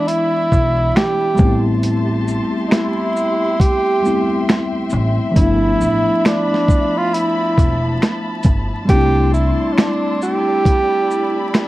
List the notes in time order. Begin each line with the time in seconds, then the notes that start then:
Already playing: E3 G#3 B3 D4 E4 D5 E5 B5
0.07 E4, closed hi-hat
0.52 B1, kick, shaker
0.96 G4, finger snap, snare, closed hi-hat
1.35 G3 A3 G4 E5 A5 C6, shaker
1.39 A1 B3 C4, kick
1.44 E4
1.83 closed hi-hat
2.28 shaker
2.68 D#4, finger snap
2.72 E4, snare, closed hi-hat
3.15 G5, shaker
3.60 G4, kick, closed hi-hat
4.02 G3 A3 B3 C4, shaker
4.07 E4
4.49 finger snap, snare, closed hi-hat
4.90 A1, shaker
5.31 F3 A3
5.35 G1 F3 B3 D4 E4 A5 B5, kick, closed hi-hat
5.41 E4
5.81 A1, shaker
6.25 D4, finger snap, snare, closed hi-hat
6.54 snare
6.68 kick, shaker
6.98 F4
7.14 E4, closed hi-hat
7.58 E1, kick, closed hi-hat, shaker
8.02 finger snap, snare, closed hi-hat
8.43 G1, kick, closed hi-hat, shaker
8.85 G3 A3 E4 D5 C6, kick, closed hi-hat
8.89 C2 C4 D4 G4
8.95 E4
9.34 E4, shaker
9.72 C#4
9.77 D4, finger snap, snare, closed hi-hat
10.22 G4, shaker
10.65 B5, kick, closed hi-hat
11.11 shaker
11.54 finger snap, snare, closed hi-hat